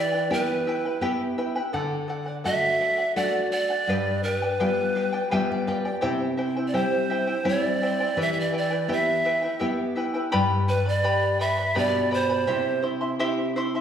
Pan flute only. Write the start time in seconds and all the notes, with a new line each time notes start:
0.00 D5
0.33 B4
2.46 E5
3.17 D5
3.52 D5
4.23 A#4
4.34 B4
6.68 D5
6.76 C5
7.48 C#5
7.61 D5
8.22 E5
8.33 E5
8.40 D5
8.57 D5
8.92 E5
10.69 B4
10.89 D5
11.41 E5
11.78 D5
12.14 C5